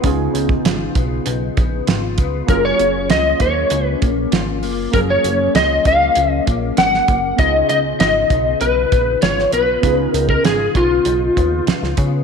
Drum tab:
HH |x-x-x-x-x-x-x-x-|x-x-x-x-x-x-x-o-|x-x-x-x-x-x-x-x-|x-x-x-x-x-x-x-x-|
SD |----o-------o---|----o-------o---|----o-------oo--|----o-------oo--|
BD |o--o--o---o---o-|o-----o---o-----|o-----o---o---o-|o-----o---o-----|

HH |x-x-x-x-x-x-x-x-|
SD |----o-------oo--|
BD |o--o--o---o---o-|